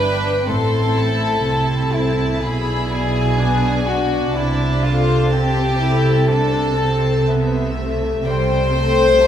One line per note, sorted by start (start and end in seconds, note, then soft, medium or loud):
0.00 0.48 G1 medium
0.00 0.48 G2 medium
0.00 0.54 E3 soft
0.00 0.49 D4 medium
0.00 2.17 E4 soft
0.00 0.53 G4 soft
0.00 0.49 B4 medium
0.00 0.23 C5 soft
0.00 2.47 E5 soft
0.00 0.50 G5 medium
0.00 0.54 G5 medium
0.24 0.96 C5 soft
0.49 1.46 A1 medium
0.49 2.47 A2 medium
0.49 1.47 A2 medium
0.49 1.44 C4 medium
0.49 2.42 E4 medium
0.49 1.94 A4 medium
0.49 0.97 C6 medium
0.73 2.47 A3 soft
0.97 1.93 C5 soft
0.97 1.46 A5 medium
1.22 1.69 A4 soft
1.46 2.41 C2 medium
1.46 2.41 C3 medium
1.46 2.41 C4 medium
1.46 2.42 A5 medium
1.46 2.47 C6 medium
1.71 2.47 A4 soft
1.93 2.42 E4 medium
1.93 2.47 C5 soft
2.19 2.47 E4 soft
2.42 4.36 B1 medium
2.42 4.39 B2 medium
2.42 4.36 B2 medium
2.42 3.39 E4 medium
2.42 3.84 G#4 medium
2.42 2.91 B5 medium
2.67 3.14 D4 soft
2.91 3.62 D5 soft
2.91 4.36 G#5 medium
3.15 3.87 D4 soft
3.39 3.87 B3 medium
3.39 3.87 D4 medium
3.39 4.40 D6 medium
3.64 4.40 D5 soft
3.86 5.30 D4 medium
3.86 4.40 D4 soft
3.86 4.35 F#4 medium
4.13 4.40 B3 soft
4.35 8.21 C2 medium
4.35 8.21 C3 medium
4.35 6.29 C3 medium
4.35 4.83 E4 medium
4.35 6.26 A5 medium
4.61 6.53 C4 soft
4.83 5.32 F4 medium
4.83 5.80 A4 soft
5.08 5.56 C5 medium
5.32 5.81 C4 medium
5.32 6.30 G4 medium
5.32 7.27 A5 medium
5.57 7.02 C5 soft
5.81 6.29 E4 medium
5.81 6.79 A4 soft
6.06 8.00 E4 soft
6.30 8.24 C3 medium
6.30 6.80 D4 medium
6.30 7.27 A4 medium
6.30 7.27 A5 medium
6.54 8.47 C4 soft
6.79 7.28 C4 medium
6.79 7.75 A4 soft
7.04 7.51 C5 medium
7.28 7.77 B3 medium
7.28 8.25 E5 medium
7.28 9.20 A5 medium
7.53 8.96 C5 soft
7.77 8.24 A3 medium
7.77 8.71 A4 soft
8.02 9.27 E4 soft
8.25 9.27 C2 medium
8.25 9.27 C3 medium
8.25 8.72 G3 medium
8.25 9.27 C5 loud
8.25 9.22 G5 medium
8.49 9.27 C4 medium
8.73 9.27 A3 medium
8.73 9.27 A4 medium
8.97 9.27 C5 medium
9.21 9.27 E5 medium
9.21 9.27 A5 medium